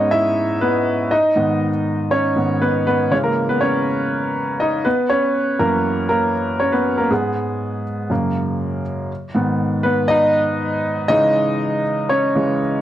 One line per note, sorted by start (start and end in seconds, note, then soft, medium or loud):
0.00 0.19 G#2 soft
0.00 0.19 G#3 soft
0.00 0.20 B3 soft
0.00 1.13 C#4 medium
0.00 1.12 D#4 medium
0.00 1.13 C#5 medium
0.00 1.11 D#5 medium
0.11 0.58 E4 medium
0.11 0.58 E5 medium
0.61 1.08 B3 medium
0.61 1.13 B4 medium
1.11 2.07 D#4 medium
1.11 2.14 D#5 medium
1.36 1.69 G#2 soft
1.36 1.70 D#3 soft
1.36 1.70 B3 soft
2.11 2.58 C#4 medium
2.11 2.62 C#5 medium
2.36 2.58 G#2 soft
2.36 2.59 D#3 soft
2.36 2.59 B3 soft
2.61 2.85 B3 medium
2.61 2.85 B4 medium
2.87 3.10 B3 medium
2.87 3.12 B4 medium
3.11 4.82 C#3 soft
3.11 4.82 E3 soft
3.11 4.83 G#3 medium
3.11 3.17 C#4 medium
3.11 3.16 C#5 medium
3.23 3.47 A#3 medium
3.23 3.49 A#4 medium
3.49 3.61 B3 medium
3.49 3.62 B4 medium
3.60 4.57 C#4 medium
3.60 4.57 C#5 medium
4.60 4.85 D#4 medium
4.60 4.84 D#5 medium
4.85 5.09 B3 medium
4.85 5.11 B4 medium
5.10 5.57 C#4 medium
5.10 5.57 C#5 medium
5.60 6.31 F#2 soft
5.60 6.32 E3 soft
5.60 6.08 A#3 medium
5.60 6.08 A#4 medium
6.09 6.57 A#3 medium
6.09 6.61 A#4 medium
6.60 6.72 C#4 medium
6.60 6.73 C#5 medium
6.72 6.97 B3 medium
6.72 6.98 B4 medium
6.98 7.10 A#3 medium
6.98 7.09 A#4 medium
7.11 7.82 G#2 soft
7.11 8.82 G#3 medium
7.11 7.82 B3 medium
7.11 8.81 G#4 medium
8.10 8.82 F#2 soft
8.10 8.82 C#3 soft
8.10 8.82 A#3 medium
9.35 11.06 G#2 medium
9.35 11.06 D#3 soft
9.35 9.84 B3 medium
9.84 10.09 B3 medium
9.84 10.08 B4 medium
10.08 11.06 D#4 medium
10.08 11.07 D#5 medium
11.08 11.81 C#3 medium
11.08 11.81 E3 medium
11.08 11.81 G#3 medium
11.08 12.06 D#4 medium
11.08 12.12 D#5 loud
12.09 12.81 C#4 medium
12.09 12.80 C#5 medium
12.35 12.57 C#3 soft
12.35 12.58 E3 soft
12.35 12.58 G#3 medium